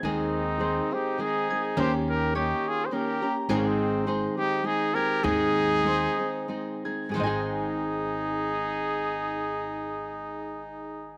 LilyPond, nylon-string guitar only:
\new Staff \with { instrumentName = "Nylon-string guitar" } { \time 3/4 \key aes \major \tempo 4 = 100 <ees aes c' aes'>4 <ees aes c' aes'>8 <aes c' aes'>8 <ees aes c' aes'>8 <aes c' aes'>8 | <ees bes des' g'>4 <ees bes des' g'>4 <ees bes des' g'>8 <bes des' g'>8 | <aes, ees aes c' ees' aes'>4 <aes c' ees' aes'>8 <aes c' ees' aes'>8 <aes c' ees' aes'>8 <aes c' ees' aes'>8 | <aes, ees aes c' ees' aes'>4 <aes c' ees' aes'>8 <aes c' ees' aes'>8 <aes c' ees' aes'>8 <aes c' ees' aes'>8 |
<aes, ees aes c' ees' aes'>2.~ | <aes, ees aes c' ees' aes'>2. | }